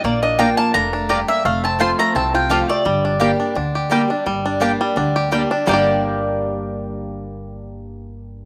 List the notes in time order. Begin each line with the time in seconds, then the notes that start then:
0.04 A#1 A#2 A#3 D5
0.23 D4 D#5
0.39 F3 A#3 D4 F4 D5 G5 A#5
0.57 A#3 A5
0.74 F1 A3 D4 A#5
0.93 D4
1.09 G2 A#3 F4 G4 D5 A#5
1.28 A#3 E5
1.45 F1 F2 A3 F5
1.64 C4 A5
1.79 F3 A3 C4 F4 C5 A5 C6
1.99 A3 A#5
2.15 C2 C3 C4 A5
2.34 F4 G5
2.49 F3 A3 C4 F4 G4 C5 F5 A5
2.68 A3 C4 F4 D5
2.85 G1 G2 G3
3.05 D4
3.20 G3 A#3 D4 G4 D5 G5
3.40 D4
3.55 D2 D3 D4
3.75 G4
3.90 G3 A#3 D4 G4 D5 G5
4.08 D4 G4
4.26 G1 G2 G3
4.46 D4
4.60 G3 A#3 D4 G4 D5 G5
4.81 G3
4.96 D2 D3 D4
5.16 G4
5.31 G3 A#3 D4 G4 D5 G5
5.51 D4 G4
5.66 G1 G2 D3 G3 A#3 D4 G4 D5 G5
5.71 D4 G4